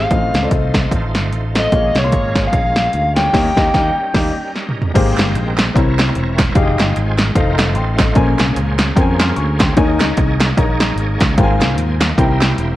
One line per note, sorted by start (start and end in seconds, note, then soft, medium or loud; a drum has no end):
0.00 0.49 F5 medium
0.10 0.30 A1 medium
0.10 0.70 A2 medium
0.10 0.16 G#3 soft
0.10 0.36 C4 medium
0.10 1.69 D#4 medium
0.10 0.36 F4 medium
0.10 1.69 F4 medium
0.10 0.36 A4 medium
0.10 1.69 C5 medium
0.10 0.36 D#5 medium
0.10 kick loud
0.10 closed hi-hat medium
0.16 1.71 A3 medium
0.34 0.49 C#2 medium
0.34 snare medium
0.34 closed hi-hat medium
0.43 1.03 C4 medium
0.43 1.03 F4 medium
0.43 1.03 A4 medium
0.43 0.47 D5 medium
0.48 0.85 C2 medium
0.48 1.05 D#5 medium
0.48 kick medium
0.48 closed hi-hat medium
0.74 kick medium
0.74 snare loud
0.74 closed hi-hat medium
0.91 1.15 A1 medium
0.91 kick loud
0.91 closed hi-hat medium
1.15 1.32 G1 medium
1.15 snare loud
1.15 closed hi-hat medium
1.32 1.66 A1 medium
1.32 closed hi-hat medium
1.55 1.68 C4 medium
1.55 1.68 F4 medium
1.55 1.68 A4 medium
1.55 1.68 D#5 medium
1.55 snare loud
1.55 closed hi-hat medium
1.59 1.98 D#5 medium
1.72 1.92 A#1 loud
1.72 2.32 A#2 medium
1.72 3.31 G#3 medium
1.72 1.97 A#3 medium
1.72 3.31 C#4 medium
1.72 1.97 F4 medium
1.72 3.31 F4 medium
1.72 1.97 G#4 medium
1.72 3.31 A#4 medium
1.72 1.98 C#5 medium
1.72 kick loud
1.72 closed hi-hat medium
1.95 2.10 C2 medium
1.95 2.47 C#5 medium
1.95 snare medium
1.95 closed hi-hat medium
2.03 2.64 A#3 medium
2.03 2.64 F4 medium
2.03 2.64 G#4 medium
2.03 2.64 C6 medium
2.12 2.47 G#1 medium
2.12 kick medium
2.12 closed hi-hat medium
2.35 kick medium
2.35 snare loud
2.35 closed hi-hat medium
2.47 3.16 F5 medium
2.53 2.87 A#1 medium
2.53 kick loud
2.53 closed hi-hat medium
2.76 snare loud
2.76 closed hi-hat medium
2.93 3.28 D2 medium
2.93 closed hi-hat medium
3.16 3.29 A#3 medium
3.16 3.29 F4 medium
3.16 3.29 G#4 medium
3.16 3.30 C#5 medium
3.16 4.50 G5 medium
3.16 snare loud
3.16 closed hi-hat medium
3.33 3.49 D#2 loud
3.33 3.49 D#3 medium
3.33 4.92 G3 medium
3.33 3.49 A#3 medium
3.33 4.92 C#4 medium
3.33 3.49 D#4 medium
3.33 4.92 D#4 medium
3.33 3.49 G4 loud
3.33 4.92 A#4 medium
3.33 3.49 C#5 loud
3.33 kick loud
3.33 snare loud
3.33 crash medium
3.56 3.68 D#2 medium
3.56 3.68 A#3 medium
3.56 3.68 D#4 medium
3.56 3.68 G4 medium
3.56 3.68 D#5 medium
3.56 kick loud
3.56 snare loud
3.74 3.90 D#2 medium
3.74 3.90 A#3 medium
3.74 3.90 D#4 medium
3.74 3.90 G4 medium
3.74 3.90 D#5 medium
3.74 kick medium
3.74 snare loud
4.14 4.30 D#2 medium
4.14 4.30 A#3 medium
4.14 4.30 D#4 medium
4.14 4.30 G4 medium
4.14 4.30 D#5 medium
4.14 kick loud
4.14 snare loud
4.14 crash medium
4.56 snare soft
4.69 mid tom medium
4.82 floor tom medium
4.94 5.15 G#1 loud
4.94 5.54 G#2 medium
4.94 5.74 G#3 medium
4.94 5.58 A#3 medium
4.94 5.75 C4 medium
4.94 5.58 G4 medium
4.94 5.58 G#4 medium
4.94 5.74 A#4 medium
4.94 5.58 C5 loud
4.94 5.74 G5 medium
4.94 kick loud
4.94 closed hi-hat medium
4.94 crash loud
5.18 5.32 G1 medium
5.18 snare loud
5.18 clap medium
5.18 closed hi-hat medium
5.35 5.69 A#1 medium
5.35 closed hi-hat medium
5.58 snare loud
5.58 clap medium
5.58 closed hi-hat medium
5.74 6.10 C2 loud
5.74 6.35 C3 medium
5.74 6.38 C4 medium
5.74 6.55 C4 medium
5.74 6.38 E4 medium
5.74 6.55 E4 medium
5.74 6.38 A#4 medium
5.74 6.55 A#4 medium
5.74 6.39 C#5 medium
5.74 6.55 C#5 medium
5.74 kick loud
5.74 closed hi-hat medium
5.99 snare loud
5.99 clap loud
5.99 closed hi-hat medium
6.15 6.50 E1 medium
6.15 closed hi-hat medium
6.39 kick medium
6.39 snare loud
6.39 clap medium
6.39 closed hi-hat medium
6.55 6.75 F1 loud
6.55 7.34 G#3 medium
6.55 7.19 D#4 medium
6.55 7.35 F4 medium
6.55 7.19 G4 medium
6.55 7.19 G#4 medium
6.55 6.61 D5 medium
6.55 7.19 F5 loud
6.55 7.19 G5 medium
6.55 kick loud
6.55 closed hi-hat loud
6.61 6.98 D#5 medium
6.79 6.94 G1 medium
6.79 snare loud
6.79 clap medium
6.79 closed hi-hat medium
6.96 7.31 G#1 medium
6.96 7.19 C5 medium
6.96 7.19 G#5 medium
6.96 closed hi-hat medium
7.18 7.59 A#4 medium
7.18 7.58 G5 medium
7.18 snare loud
7.18 clap medium
7.18 closed hi-hat medium
7.35 7.76 F1 loud
7.35 8.16 A3 medium
7.35 7.99 D#4 medium
7.35 8.16 D#4 medium
7.35 8.15 F4 medium
7.35 7.76 A4 medium
7.35 7.76 C5 medium
7.35 8.16 C5 medium
7.35 7.76 F5 medium
7.35 kick loud
7.35 closed hi-hat medium
7.59 snare loud
7.59 clap loud
7.59 closed hi-hat medium
7.75 8.10 A1 medium
7.75 7.98 G5 medium
7.75 7.98 C6 medium
7.75 closed hi-hat medium
7.98 8.38 A4 medium
7.98 8.37 D#5 medium
7.98 kick medium
7.98 snare loud
7.98 clap loud
7.98 closed hi-hat medium
8.15 8.36 A#1 loud
8.15 8.75 A#2 medium
8.15 9.74 A#3 medium
8.15 8.23 C4 medium
8.15 8.79 C#4 medium
8.15 9.75 G#4 medium
8.15 8.79 A#4 medium
8.15 8.80 C5 medium
8.15 9.74 C5 medium
8.15 8.80 G#5 loud
8.15 kick loud
8.15 closed hi-hat medium
8.22 9.77 C#4 medium
8.39 8.54 C2 medium
8.39 snare loud
8.39 clap medium
8.39 closed hi-hat medium
8.56 8.91 C#2 medium
8.56 closed hi-hat medium
8.79 snare loud
8.79 clap medium
8.79 closed hi-hat medium
8.96 9.31 F2 medium
8.96 9.59 C#4 medium
8.96 9.59 A#4 medium
8.96 9.60 C5 medium
8.96 9.02 G5 medium
8.96 kick loud
8.96 closed hi-hat loud
9.01 9.22 G#5 medium
9.20 9.36 C6 medium
9.20 9.36 F6 medium
9.20 snare loud
9.20 clap loud
9.20 closed hi-hat medium
9.36 9.71 D2 medium
9.36 9.59 G#5 medium
9.36 9.59 C#6 medium
9.36 closed hi-hat medium
9.60 9.99 G5 medium
9.60 9.98 C6 medium
9.60 kick medium
9.60 snare loud
9.60 clap medium
9.60 closed hi-hat medium
9.76 9.97 D#2 loud
9.76 10.36 D#3 medium
9.76 11.35 A#3 medium
9.76 10.40 D#4 medium
9.76 11.35 D#4 medium
9.76 11.35 G#4 medium
9.76 10.40 A#4 medium
9.76 9.83 C5 medium
9.76 10.40 C#5 medium
9.76 10.40 G#5 loud
9.76 kick loud
9.76 closed hi-hat medium
9.84 11.38 C#5 medium
10.00 10.15 C#2 medium
10.00 snare loud
10.00 clap medium
10.00 closed hi-hat medium
10.17 10.51 C2 medium
10.17 kick medium
10.17 closed hi-hat medium
10.40 snare loud
10.40 clap medium
10.40 closed hi-hat medium
10.57 10.92 A#1 medium
10.57 11.20 D#4 medium
10.57 11.21 A#4 medium
10.57 11.21 C#5 medium
10.57 11.21 A#5 medium
10.57 kick loud
10.57 closed hi-hat medium
10.80 snare loud
10.80 clap loud
10.80 closed hi-hat medium
10.96 11.16 G#1 medium
10.96 closed hi-hat medium
11.20 11.35 C#2 medium
11.20 kick loud
11.20 snare loud
11.20 clap medium
11.20 closed hi-hat medium
11.37 11.58 G#1 loud
11.37 11.97 G#2 medium
11.37 12.16 A#3 medium
11.37 12.01 F4 medium
11.37 11.77 F4 medium
11.37 11.77 G#4 medium
11.37 12.01 A#4 medium
11.37 11.77 C5 medium
11.37 12.01 C5 medium
11.37 11.44 G5 medium
11.37 kick loud
11.37 closed hi-hat loud
11.43 12.04 G#5 loud
11.60 11.77 C2 medium
11.60 snare loud
11.60 clap medium
11.60 closed hi-hat medium
11.77 12.12 D#2 medium
11.77 12.00 C5 medium
11.77 12.00 G#5 medium
11.77 closed hi-hat medium
12.01 12.40 D#4 medium
12.01 12.16 C5 medium
12.01 snare loud
12.01 clap medium
12.01 closed hi-hat medium
12.17 12.52 C2 medium
12.17 12.76 C3 medium
12.17 12.76 A#3 medium
12.17 12.23 C#4 medium
12.17 12.76 E4 medium
12.17 12.76 G4 medium
12.17 12.76 A#4 medium
12.17 12.76 C5 medium
12.17 12.76 G5 medium
12.17 kick loud
12.17 closed hi-hat medium
12.22 12.76 E4 medium
12.41 snare loud
12.41 clap loud
12.41 closed hi-hat medium
12.58 12.76 E1 medium
12.58 closed hi-hat medium